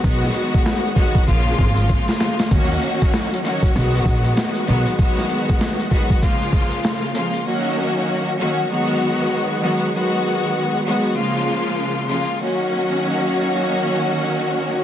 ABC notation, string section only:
X:1
M:4/4
L:1/8
Q:"Swing 16ths" 1/4=97
K:Ebm
V:1 name="String section" clef=bass
[E,G,A,CG]3 [E,G,A,CG] [D,F,A,B,F]3 [D,F,A,B,F] | [E,G,B,DG]3 [E,G,B,DG] [^D,^F,^G,=B,^F]3 [E,_G,A,CG] | [E,G,A,CG]3 [E,G,A,CG] [D,F,A,B,F]3 [D,F,A,B,F] | [E,G,B,DG]3 [E,G,B,DG] [^D,^F,^G,=B,^F]3 [D,F,G,B,F] |
[^D,^F,^G,=B,^F]3 [D,F,G,B,F] [_D,=F,A,_B,=F]3 [D,F,A,B,F] | [E,G,B,DG]8 |]